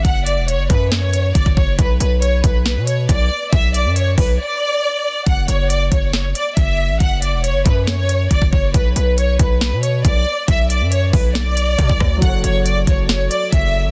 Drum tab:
HH |x-x-x-x-x-x-x---|x-x-x-x-x-x-x---|x-x-x-o---------|x-x-x-x-x-x-x---|
SD |--------o-------|--------o-------|----------------|--------o-------|
BD |o-----o-----ooo-|o-----o-----o---|o-----o---------|o-----o-----o---|

HH |x-x-x-x-x-x-x---|x-x-x-x-x-x-x---|x-x-x-o-x-x-x---|x-x-x-x-x-x-x---|
SD |--------o-------|--------o-------|--------o-----r-|--------o-------|
BD |o-----o-----ooo-|o-----o-----o---|o-----o-----ooo-|o-----o-----o---|